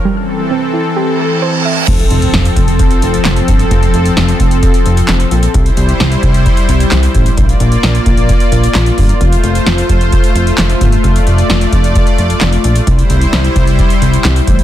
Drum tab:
CC |----------------|x---------------|----------------|----------------|
HH |----------------|xxxxxxxxxxxxxxxx|xxxxxxxxxxxxxxxx|xxxxxxxxxxxxxxxx|
CP |----------------|------------x---|------------x---|------------x---|
SD |----------------|----o-------o---|----o-------o---|----o-------o---|
BD |----------------|o-----o-o-----o-|o-----o-o-------|o-----o-o-----o-|

CC |----------------|----------------|----------------|----------------|
HH |xxxxxxxxxxxxxxox|xxxxxxxxxxxxxxxx|xxxxxxxxxxxxxxxx|xxxxxxxxxxxxxxxx|
CP |------------x---|------------x---|------------x---|------------x---|
SD |----o-------o---|----o-------o---|----o-------o---|----o-------o---|
BD |o-----o-o-----o-|o-----o-o-----o-|o-----o-o-------|o-----o-o-----o-|